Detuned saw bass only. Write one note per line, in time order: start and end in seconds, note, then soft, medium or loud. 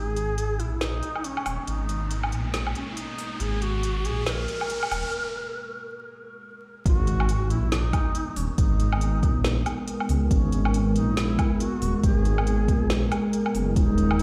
0.00 0.61 G#1 medium
0.59 1.02 A#1 medium
1.46 1.58 D#1 medium
1.67 2.34 G#1 loud
2.32 2.74 A#1 medium
3.40 4.06 G#1 loud
4.05 4.47 A#1 medium
4.91 5.03 D#1 medium
6.85 7.52 G#1 loud
7.50 7.92 A#1 medium
8.37 8.48 D#1 medium
8.58 9.24 G#1 loud
9.23 9.65 A#1 medium
10.09 10.29 C#2 medium
10.31 10.97 G#1 loud
10.96 11.38 A#1 medium
11.82 11.94 D#1 medium
12.03 12.70 G#1 loud
12.68 13.10 A#1 loud
13.55 13.75 F#1 medium
13.76 14.23 D#1 loud